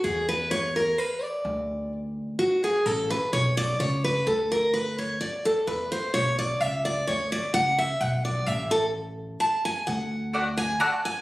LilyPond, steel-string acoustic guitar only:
\new Staff \with { instrumentName = "Steel-string acoustic guitar" } { \time 3/4 \key d \lydian \tempo 4 = 128 gis'8 b'8 cis''8 ais'8 b'8 d''8~ | d''4 r4 fis'8 gis'8 | a'8 b'8 cis''8 d''8 cis''8 b'8 | a'8 bes'8 b'8 cis''8 d''8 a'8 |
b'8 c''8 cis''8 d''8 e''8 d''8 | cis''8 d''8 fis''8 e''8 fis''8 d''8 | e''8 a'8 r4 a''8 gis''8 | fis''4. gis''8 a''8 gis''8 | }